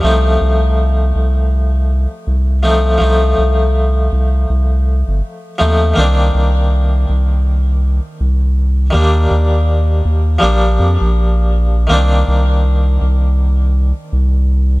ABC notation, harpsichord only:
X:1
M:4/4
L:1/8
Q:"Swing 16ths" 1/4=81
K:Cdor
V:1 name="Harpsichord"
[F,A,CE]6- [F,A,CE] [F,A,CE] | [F,A,CE]6- [F,A,CE] [F,A,CE] | [E,B,CD]8 | [E,G,B,D]4 [F,G,B,D]4 |
[E,B,CD]8 |]